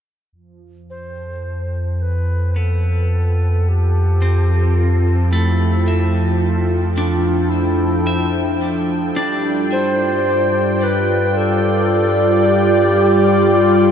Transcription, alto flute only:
0.90 2.03 C5 medium
2.02 2.59 B4 medium
2.57 3.70 A4 medium
3.69 4.77 G4 medium
4.78 5.32 F4 medium
5.30 6.15 E4 medium
6.40 6.92 F4 medium
6.95 7.51 F4 medium
7.49 8.60 E4 medium
9.72 10.85 C5 loud
10.83 11.38 B4 medium
11.37 12.47 A4 medium
12.45 13.54 G4 medium
13.54 13.91 F4 medium

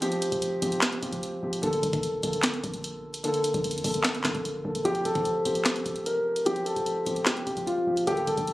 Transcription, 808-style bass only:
0.00 0.28 F1 loud
0.32 0.61 F1 loud
0.62 1.01 F1 loud
1.02 1.12 F1 loud
1.13 1.42 F1 loud
1.43 1.62 F1 loud
1.63 1.82 A#1 loud
1.83 2.22 A#1 loud
2.23 2.62 A#1 loud
2.64 3.36 A#1 loud
3.34 3.53 F2 loud
3.54 3.76 A#1 loud
3.74 3.84 F2 loud
3.84 4.23 A#1 loud
4.25 4.34 A#1 loud
4.35 4.64 A#1 loud
4.65 4.84 A#1 loud
4.85 5.04 F1 loud
5.05 5.44 F1 loud
5.46 5.77 F1 loud
5.76 5.85 C2 loud
5.86 6.73 F1 loud
6.76 7.05 F1 loud
7.06 7.45 F1 loud
7.47 7.56 F1 loud
7.57 7.86 F1 loud
7.87 8.06 F1 loud
8.07 8.27 A#1 loud
8.27 8.37 A#1 loud
8.37 8.53 A#1 loud

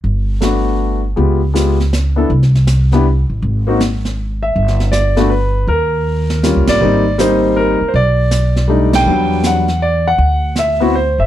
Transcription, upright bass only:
0.04 1.13 G1 medium
1.17 2.26 C#2 medium
2.30 3.26 C2 medium
3.30 3.42 A1 medium
3.42 4.51 G#1 medium
4.56 5.64 G1 medium
5.67 6.51 D#2 medium
6.56 6.67 C#2 medium
6.68 6.80 A1 soft
6.81 7.77 G#1 medium
7.81 muted upright bass stroke soft
7.94 9.02 B1 medium
9.05 10.14 E2 medium
10.18 11.14 D2 medium
11.18 11.27 F#1 medium

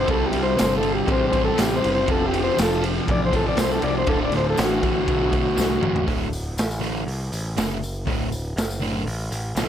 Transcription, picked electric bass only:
0.08 0.29 C2 loud
0.34 0.54 C2 medium
0.60 1.00 G1 medium
1.08 1.48 A1 loud
1.59 1.79 A1 loud
1.85 2.04 F#1 medium
2.08 2.49 F1 loud
2.58 2.99 F1 medium
3.09 3.49 A1 loud
3.57 3.78 C2 loud
3.83 4.03 C2 medium
4.08 4.28 D1 loud
4.33 4.53 D1 medium
4.58 4.98 A1 medium
5.08 5.48 B1 medium
5.57 5.77 C2 medium
5.82 6.02 A1 medium
6.08 6.55 D1 medium
6.57 7.04 A1 medium
7.07 7.30 C2 medium
7.32 7.55 A1 medium
7.57 8.04 F#1 medium
8.07 8.54 D1 medium
8.56 9.03 F#1 medium
9.06 9.30 A1 medium
9.31 9.54 A1 medium
9.55 9.68 B1 medium

